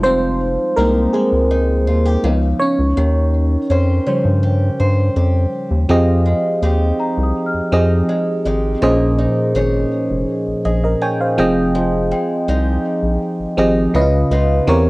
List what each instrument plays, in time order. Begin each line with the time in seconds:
Already playing: analog synth bass F1, fm electric piano G3 G#3 D#4, steel-string acoustic guitar G#3
0.03 steel-string acoustic guitar F3, fm electric piano C4 C5
0.77 analog synth bass C2, fm electric piano G3 G#3 A#3 D#4 A#4, steel-string acoustic guitar G#3 D#4 G4
1.13 steel-string acoustic guitar G#3, fm electric piano G#3 G#4
1.32 analog synth bass C#2
1.51 steel-string acoustic guitar D#4
1.87 analog synth bass D#2, steel-string acoustic guitar F4
2.06 steel-string acoustic guitar G4
2.24 analog synth bass C#2, steel-string acoustic guitar C#3, fm electric piano F3 B3 D#4
2.60 fm electric piano C#4 C#5
2.79 analog synth bass C#2
2.97 analog synth bass D#2, steel-string acoustic guitar D#3
3.70 analog synth bass F2, steel-string acoustic guitar C#4 G4 C5
4.06 fm electric piano C#3 F3 G3 C5, steel-string acoustic guitar C#4
4.25 analog synth bass G2
4.43 steel-string acoustic guitar G4
4.79 analog synth bass G2, steel-string acoustic guitar C5
5.16 analog synth bass F2, steel-string acoustic guitar G4
5.71 analog synth bass D#2
5.89 analog synth bass F2, fm electric piano F3 C4 G4 G#4 D#5, steel-string acoustic guitar F3, celesta G5
6.26 steel-string acoustic guitar G#3
6.62 analog synth bass D#2, steel-string acoustic guitar G#3 D#4 G4
7.00 celesta A#5
7.17 analog synth bass C2
7.23 celesta D#6
7.46 celesta F6
7.54 analog synth bass F2
7.72 analog synth bass F2, fm electric piano F3 C4 G4 G#4 D#5, steel-string acoustic guitar D#4
8.09 steel-string acoustic guitar G#3
8.45 analog synth bass G#1, steel-string acoustic guitar G#3 D#4 G4
8.82 analog synth bass A#1, fm electric piano A#2 F3 C#4 G#4 C5 D#5, steel-string acoustic guitar A#3
9.19 steel-string acoustic guitar D#4
9.55 analog synth bass G#1, steel-string acoustic guitar D#4 G#4 C#5
10.10 analog synth bass F1
10.47 analog synth bass A#1
10.65 analog synth bass A#1, steel-string acoustic guitar G#4, fm electric piano D#5
10.84 fm electric piano A#4 D#5
11.01 steel-string acoustic guitar D#4, fm electric piano C#5 G5 G#5
11.20 fm electric piano C5 F5
11.38 analog synth bass F1, fm electric piano F3 C4 G#4 D#5 G5, steel-string acoustic guitar F3
11.75 steel-string acoustic guitar F3
12.11 steel-string acoustic guitar G#3, celesta G5
12.48 analog synth bass C2, steel-string acoustic guitar G#3 D#4 G4
13.03 analog synth bass A#1
13.39 analog synth bass G#1
13.57 analog synth bass G#1, fm electric piano F3 C4 G4 G#4 D#5, steel-string acoustic guitar D#4
13.94 analog synth bass C#2, fm electric piano C#3 C#4 E4 B4 D#5, steel-string acoustic guitar C#3
14.02 fm electric piano F4
14.31 analog synth bass C#2, steel-string acoustic guitar B3 D#4 F4
14.67 analog synth bass E2, fm electric piano E3 C4 G4 A#4 C#5, steel-string acoustic guitar E3